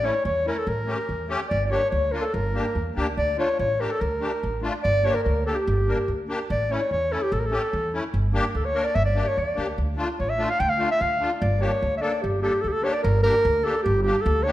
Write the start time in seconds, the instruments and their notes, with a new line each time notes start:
0.02 accordion A3 C#4 E4, clarinet C#5
0.25 upright bass E2, clarinet C#5
0.45 accordion A3 C#4 E4, clarinet A#4
0.58 clarinet A4
0.67 upright bass A1, clarinet A#4
0.86 accordion A3 C#4 G4
1.09 upright bass E2
1.28 accordion A3 C#4 G4
1.48 upright bass G1, clarinet D5
1.66 clarinet D5
1.70 accordion A#3 D4 G4, clarinet C#5
1.90 upright bass D2, clarinet C#5
2.12 accordion A#3 D4 F4, clarinet A#4
2.22 clarinet A4
2.34 upright bass G1, clarinet A#4
2.54 accordion A#3 D4 G4
2.75 upright bass E2
2.95 upright bass D2, accordion A#3 D4 G4
3.17 upright bass D2, clarinet D5
3.37 accordion A3 D4 F4, clarinet C#5
3.59 upright bass A1, clarinet C#5
3.79 accordion A3 D4 G4, clarinet A#4
3.91 clarinet A4
4.01 upright bass D2, clarinet A#4
4.20 accordion A3 D4 G4
4.43 upright bass A1
4.62 accordion A3 D4 F4
4.83 upright bass G1, clarinet D5
5.03 accordion A#3 D4 G4, clarinet C#5
5.15 clarinet A#4
5.24 upright bass D2, clarinet A#4
5.45 accordion A#3 D4 G4, clarinet A4
5.55 clarinet G4
5.67 upright bass G1
5.87 accordion A#3 D4 A#4
6.08 upright bass D2
6.28 accordion A#3 D4 G4
6.50 upright bass A1, clarinet D5
6.70 accordion A3 C#4 E4, clarinet C#5
6.91 upright bass E2, clarinet C#5
7.10 accordion A3 C#4 E4, clarinet A4
7.23 clarinet G4
7.32 upright bass A1, clarinet A4
7.40 clarinet A#4
7.46 accordion A3, clarinet A4
7.51 accordion C#4 G4
7.73 upright bass E2
7.93 accordion A3 C#4 E4
8.14 upright bass G1
8.33 accordion A#3 D4 G4
8.55 upright bass D2, clarinet A4
8.65 clarinet C#5
8.74 accordion A#3 D4 A#4
8.84 clarinet D5
8.95 upright bass G1, clarinet E5
9.05 clarinet D5
9.15 accordion A#3 D4 G4
9.28 clarinet C#5
9.37 upright bass E2, clarinet D5
9.54 upright bass D2, accordion A#3 D4 G4
9.78 upright bass D2
9.97 accordion A3 D4 F4
10.20 upright bass A1, clarinet C#5
10.30 clarinet E5
10.37 accordion A3 D4 F4
10.50 clarinet F5
10.60 upright bass D2, clarinet G5
10.69 clarinet F5
10.77 accordion A3 D4 F4
10.91 clarinet E5
11.01 upright bass D2, clarinet F5
11.20 accordion A3 D4 F4
11.41 upright bass G1, clarinet D5
11.60 accordion A#3 D4 G4, clarinet C#5
11.82 upright bass D2
11.97 accordion A#3 D4, clarinet E5
12.01 accordion A4, clarinet D5
12.22 upright bass G1, clarinet G4
12.41 accordion A#3 D4 A4, clarinet G4
12.62 upright bass D2, clarinet A4
12.68 clarinet G4 A4
12.83 accordion A#3 D4 G4, clarinet C#5
12.93 clarinet D5
13.03 upright bass G1, clarinet A#4
13.23 accordion A#3 D4 G4, clarinet A#4
13.45 upright bass D2
13.64 accordion A#3 D4 G4, clarinet A4
13.83 upright bass G1, clarinet G4
14.02 accordion A#3 D4 G4, clarinet G4
14.21 clarinet A4
14.26 upright bass D2
14.43 accordion A#3 D4 G4, clarinet C#5